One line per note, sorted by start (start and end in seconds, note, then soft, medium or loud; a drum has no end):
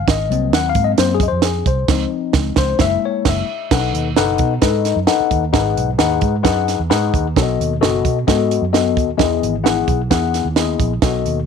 0.07 0.27 G#1 loud
0.07 0.56 D#5 medium
0.07 kick loud
0.07 snare loud
0.07 closed hi-hat medium
0.29 0.53 C2 medium
0.29 0.95 F#3 medium
0.29 0.95 A#3 medium
0.29 0.96 C4 medium
0.29 closed hi-hat medium
0.53 0.72 D#2 medium
0.53 0.68 F#5 loud
0.53 snare loud
0.53 closed hi-hat medium
0.69 0.84 F5 loud
0.75 0.95 G#2 loud
0.75 kick medium
0.75 closed hi-hat medium
0.84 0.91 D#5 medium
0.98 1.28 F#2 loud
0.98 1.18 F#3 soft
0.98 1.19 A#3 soft
0.98 1.19 C4 medium
0.98 1.14 C5 medium
0.98 snare loud
0.98 closed hi-hat loud
1.14 1.25 G#4 medium
1.20 1.28 D#5 medium
1.20 kick loud
1.20 closed hi-hat medium
1.28 1.62 F2 medium
1.28 1.44 C5 medium
1.42 1.68 G#4 medium
1.42 snare loud
1.42 closed hi-hat medium
1.66 1.86 C2 medium
1.66 2.09 C5 medium
1.66 kick medium
1.66 closed hi-hat medium
1.88 2.04 C#2 loud
1.88 2.76 F3 medium
1.88 2.77 C4 soft
1.88 2.77 D#4 medium
1.88 kick loud
1.88 snare loud
1.88 crash medium
2.33 2.50 C#2 loud
2.33 kick loud
2.33 snare loud
2.56 2.73 C#2 loud
2.56 2.81 C5 medium
2.56 kick loud
2.56 snare loud
2.79 2.95 F#1 loud
2.79 3.44 G#3 medium
2.79 3.45 A#3 medium
2.79 3.45 E4 medium
2.79 3.04 E5 loud
2.79 kick loud
2.79 snare loud
3.05 3.28 C#5 medium
3.25 3.41 F#1 loud
3.25 3.70 E5 medium
3.25 kick loud
3.25 snare loud
3.25 crash medium
3.71 3.91 B1 medium
3.71 4.36 B2 medium
3.71 3.77 C#4 medium
3.71 4.07 A4 medium
3.71 4.07 B4 medium
3.71 4.07 F#5 medium
3.71 kick loud
3.71 snare loud
3.71 crash medium
3.77 4.10 D#4 medium
3.94 4.14 D#2 medium
3.94 closed hi-hat medium
4.16 4.37 F#1 loud
4.16 4.53 D#4 medium
4.16 4.53 A4 medium
4.16 4.53 B4 medium
4.16 4.53 F#5 medium
4.16 snare loud
4.16 closed hi-hat medium
4.38 4.59 B2 loud
4.38 kick medium
4.38 closed hi-hat medium
4.62 4.92 G#2 medium
4.62 4.98 D#4 medium
4.62 4.98 A4 medium
4.62 4.98 B4 medium
4.62 4.98 D#5 medium
4.62 kick medium
4.62 snare loud
4.62 closed hi-hat medium
4.85 snare soft
4.85 closed hi-hat medium
4.96 5.06 F#2 medium
5.07 5.44 D#4 medium
5.07 5.44 A4 medium
5.07 5.44 B4 medium
5.07 5.43 F#5 medium
5.07 snare loud
5.07 closed hi-hat medium
5.20 muted fingered electric bass stroke soft
5.31 5.51 D#2 medium
5.31 kick medium
5.31 closed hi-hat medium
5.53 5.74 G#1 loud
5.53 6.18 G#2 medium
5.53 5.89 D#4 medium
5.53 5.89 G#4 medium
5.53 5.59 A#4 medium
5.53 5.89 F#5 medium
5.53 kick loud
5.53 snare loud
5.53 closed hi-hat medium
5.59 5.92 B4 medium
5.77 5.96 B1 medium
5.77 closed hi-hat medium
5.98 6.19 D#2 medium
5.98 6.35 D#4 medium
5.98 6.35 G#4 medium
5.98 6.35 B4 medium
5.98 6.35 F#5 medium
5.98 snare loud
5.98 closed hi-hat medium
6.21 6.42 G#2 loud
6.21 kick medium
6.21 closed hi-hat medium
6.43 6.75 F#2 loud
6.43 6.80 D#4 medium
6.43 6.80 G#4 medium
6.43 6.80 B4 medium
6.43 6.80 F#5 medium
6.43 kick medium
6.43 snare loud
6.43 closed hi-hat loud
6.68 snare soft
6.68 closed hi-hat medium
6.79 6.89 E2 medium
6.90 7.11 G#2 loud
6.90 7.26 D#4 medium
6.90 7.26 G#4 medium
6.90 7.26 B4 medium
6.90 7.26 F#5 medium
6.90 snare loud
6.90 closed hi-hat medium
7.14 7.34 D#2 medium
7.14 kick medium
7.14 closed hi-hat medium
7.36 7.56 B1 loud
7.36 8.01 B2 medium
7.36 7.72 B3 medium
7.36 7.72 F#4 medium
7.36 7.72 A4 medium
7.36 7.42 C#5 medium
7.36 kick loud
7.36 snare loud
7.36 closed hi-hat medium
7.42 7.75 D#5 medium
7.60 7.79 D#2 medium
7.60 closed hi-hat medium
7.81 8.02 F#1 medium
7.81 8.18 B3 medium
7.81 8.18 F#4 medium
7.81 8.18 A4 medium
7.81 8.18 D#5 loud
7.81 snare loud
7.81 closed hi-hat medium
8.05 8.25 B2 medium
8.05 kick medium
8.05 closed hi-hat medium
8.27 8.58 G#2 loud
8.27 8.64 B3 medium
8.27 8.64 F#4 medium
8.27 8.64 A4 medium
8.27 8.64 D#5 loud
8.27 kick medium
8.27 snare loud
8.27 closed hi-hat medium
8.51 closed hi-hat medium
8.62 8.97 F#2 medium
8.73 9.09 B3 medium
8.73 9.09 F#4 medium
8.73 9.09 A4 medium
8.73 9.09 D#5 medium
8.73 snare loud
8.73 closed hi-hat medium
8.97 9.17 D#2 medium
8.97 kick medium
8.97 closed hi-hat medium
9.17 9.39 E2 medium
9.17 9.83 E3 medium
9.17 9.54 B3 medium
9.17 9.55 E4 medium
9.17 9.55 G#4 medium
9.17 9.55 D#5 medium
9.17 kick loud
9.17 snare loud
9.17 closed hi-hat medium
9.43 9.82 G#1 medium
9.43 closed hi-hat medium
9.64 10.00 B3 medium
9.64 10.00 E4 medium
9.64 10.01 G#4 medium
9.64 10.01 F#5 medium
9.64 snare loud
9.64 closed hi-hat medium
9.88 10.08 B1 medium
9.88 kick medium
9.88 closed hi-hat medium
10.11 10.41 E2 loud
10.11 10.47 B3 medium
10.11 10.47 E4 medium
10.11 10.47 G#4 medium
10.11 10.47 F#5 medium
10.11 kick medium
10.11 snare loud
10.11 closed hi-hat medium
10.34 snare soft
10.34 closed hi-hat medium
10.45 10.75 D#2 medium
10.56 10.92 B3 medium
10.56 10.93 E4 medium
10.56 10.93 G#4 medium
10.56 10.92 D#5 medium
10.56 snare medium
10.56 closed hi-hat medium
10.80 11.00 A#1 medium
10.80 kick medium
10.80 closed hi-hat medium
11.02 11.22 B1 loud
11.02 11.46 B2 medium
11.02 11.39 B3 medium
11.02 11.39 F#4 medium
11.02 11.39 A4 medium
11.02 11.39 D#5 medium
11.02 kick loud
11.02 snare loud
11.02 closed hi-hat medium
11.25 11.45 D#2 medium
11.25 closed hi-hat medium